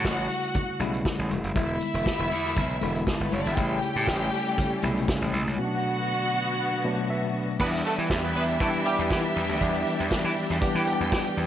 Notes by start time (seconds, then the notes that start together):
Already playing: C#3 G3 A3 E4 F#4 F#5
0.05 A1, kick, snare, high conga
0.30 open hi-hat, muted conga
0.43 closed hi-hat
0.55 kick, closed hi-hat, muted conga, low conga
0.80 B1 C#3 G3 A3 E4, closed hi-hat, muted conga
0.94 closed hi-hat
1.05 kick, snare, high conga
1.19 A1
1.30 E1, closed hi-hat, high conga
1.44 F#1, closed hi-hat
1.55 E1 D3 G#3 B3 E4 E5, kick, closed hi-hat
1.81 closed hi-hat, muted conga
1.94 E1, closed hi-hat
2.06 kick, snare, high conga
2.19 E1
2.31 E2, open hi-hat, muted conga
2.45 snare, closed hi-hat
2.56 B1, kick, closed hi-hat, muted conga, low conga
2.81 E1 D3 G#3 B3 E4, closed hi-hat, muted conga
2.95 closed hi-hat
3.07 G#3 G#4, kick, snare, high conga
3.16 A3 A4
3.20 G1 B3 B4, closed hi-hat
3.32 F#1 C#4 C#5, closed hi-hat, high conga
3.40 D4 D5
3.46 G#1 E4 E5, closed hi-hat
3.56 A1 C#3 G3 A3 C#4 E4 G4 G5, kick, closed hi-hat
3.82 closed hi-hat, muted conga
3.96 A2, closed hi-hat
4.07 A1, kick, snare, high conga
4.21 closed hi-hat
4.32 open hi-hat, muted conga
4.46 closed hi-hat
4.58 kick, closed hi-hat, muted conga, low conga
4.82 B1 C3 G3 A3 E4, closed hi-hat, muted conga
4.88 C#3
4.97 closed hi-hat
5.08 kick, snare, high conga
5.22 A1, closed hi-hat
5.33 B1, closed hi-hat, high conga
5.47 C#2, closed hi-hat
5.57 B2 D3 F#3 A3 B3 C#4 F#4 F#5
5.65 D4
6.84 B2 F#3 A3 D4 B4
7.10 E5
7.60 E2 E3 G3 B3 D4 E4 G4 B4 E5, kick, crash
7.85 A3 A4, closed hi-hat
7.98 E3, closed hi-hat
8.10 E2, kick, snare
8.23 B3 B4
8.35 E2 B3 B4, open hi-hat
8.49 closed hi-hat
8.60 E3 G3 A3 B3 D4 G4 A4, kick, closed hi-hat
8.85 E3 G3 B3 D4 G4, closed hi-hat
8.99 E2, closed hi-hat
9.11 E3, kick, snare
9.36 E2, open hi-hat
9.49 D2, closed hi-hat
9.61 E2 E3 G3 B3 D4 G4, kick, closed hi-hat
9.75 closed hi-hat
9.86 closed hi-hat
10.00 E2, closed hi-hat
10.11 muted slap bass stroke, kick, snare
10.24 E3
10.37 open hi-hat
10.50 E2, snare, closed hi-hat
10.61 E3 G3 B3 D4 G4 G5, muted slap bass stroke, kick, closed hi-hat
10.75 E3, closed hi-hat
10.87 E3 G3 B3 D4 G4, closed hi-hat
11.00 E2, closed hi-hat
11.12 E3, kick, snare
11.26 closed hi-hat
11.37 E2, open hi-hat